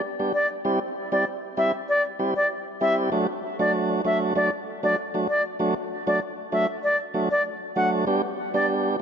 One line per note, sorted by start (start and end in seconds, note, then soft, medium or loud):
0.19 0.32 G3 medium
0.19 0.32 B3 medium
0.19 0.32 D4 medium
0.19 0.33 G4 medium
0.34 0.47 D5 medium
0.65 0.79 G3 loud
0.65 0.79 C4 medium
0.65 0.80 E4 medium
0.65 0.80 G4 loud
1.12 1.25 G3 medium
1.12 1.25 C4 medium
1.12 1.25 E4 medium
1.12 1.25 G4 medium
1.12 1.24 D5 medium
1.57 1.72 G3 medium
1.57 1.72 C4 medium
1.57 1.72 E4 medium
1.57 1.72 G4 medium
1.57 1.71 E5 medium
1.89 2.02 D5 medium
2.19 2.34 G3 medium
2.19 2.34 C4 medium
2.19 2.34 E4 medium
2.19 2.34 G4 medium
2.36 2.48 D5 medium
2.81 3.10 G3 medium
2.81 3.10 C4 medium
2.81 3.10 E4 medium
2.81 3.10 G4 medium
2.81 2.95 E5 medium
3.12 3.27 F#3 loud
3.12 3.27 A3 medium
3.12 3.27 D4 medium
3.12 3.27 F#4 loud
3.59 4.02 F#3 medium
3.59 4.02 A3 medium
3.59 4.02 D4 medium
3.59 4.02 F#4 medium
3.59 3.71 D5 medium
4.05 4.33 F#3 medium
4.05 4.34 A3 medium
4.05 4.34 D4 medium
4.05 4.34 F#4 medium
4.05 4.18 E5 medium
4.35 4.50 F#3 medium
4.35 4.50 A3 medium
4.35 4.50 D4 medium
4.35 4.51 F#4 loud
4.35 4.49 D5 medium
4.83 4.96 F#3 medium
4.83 4.96 A3 medium
4.83 4.96 D4 medium
4.83 4.96 F#4 medium
4.83 4.95 D5 medium
5.14 5.27 F#3 medium
5.14 5.27 A3 medium
5.14 5.27 D4 medium
5.14 5.27 F#4 medium
5.29 5.42 D5 medium
5.59 5.74 F#3 loud
5.59 5.74 A3 medium
5.59 5.74 D4 medium
5.59 5.75 F#4 loud
6.07 6.20 F#3 medium
6.07 6.20 A3 medium
6.07 6.20 D4 medium
6.07 6.20 F#4 medium
6.07 6.19 D5 medium
6.52 6.67 F#3 medium
6.52 6.67 A3 medium
6.52 6.67 D4 medium
6.52 6.67 F#4 medium
6.52 6.66 E5 medium
6.84 6.97 D5 medium
7.14 7.29 F#3 medium
7.14 7.29 A3 medium
7.14 7.29 D4 medium
7.14 7.29 F#4 medium
7.31 7.43 D5 medium
7.76 8.05 F#3 medium
7.76 8.05 A3 medium
7.76 8.05 D4 medium
7.76 8.05 F#4 medium
7.76 7.89 F#5 medium
8.07 8.22 G3 loud
8.07 8.22 B3 medium
8.07 8.22 D4 medium
8.07 8.22 G4 loud
8.54 8.96 G3 medium
8.54 8.96 B3 medium
8.54 8.96 D4 medium
8.54 8.97 G4 medium
8.54 8.66 D5 medium